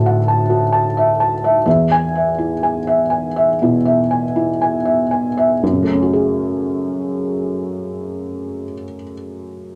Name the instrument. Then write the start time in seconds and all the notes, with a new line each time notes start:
felt piano
Already playing: D2 A2 F#4 E5 F#5 A5
0.06 F#5
0.28 A5
0.50 F#4
0.72 A5
0.97 E5
1.20 A5
1.44 E5
1.66 E2 E5
1.92 G#5
2.15 E5
2.38 E4
2.63 G#5
2.87 E5
3.10 G#5
3.36 E5
3.62 B2 E4
3.85 E5
4.11 G#5
4.36 E4
4.61 G#5
4.85 E5
5.11 G#5
5.37 E5
5.63 F#2
5.72 C#3
5.83 A3
5.93 C#4
6.02 F#4
6.13 G#4